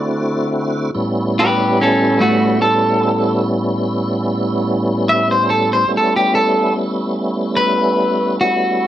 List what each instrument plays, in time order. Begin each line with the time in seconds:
Already playing: tonewheel organ D3 A3 C4 E4 F#4, clean electric guitar D5
0.95 tonewheel organ A2 G3 B3 C#4 E4
1.39 clean electric guitar G4 B4
1.81 clean electric guitar C#4 A4
2.20 clean electric guitar A3 F#4
2.61 clean electric guitar A4
5.09 clean electric guitar E5
5.31 clean electric guitar C5
5.50 clean electric guitar A4
5.73 clean electric guitar C5
5.87 tonewheel organ G3 A3 B3 C#4 E4
5.97 clean electric guitar A4
6.16 clean electric guitar G4
6.35 clean electric guitar A4
7.56 clean electric guitar B4
8.41 clean electric guitar F#4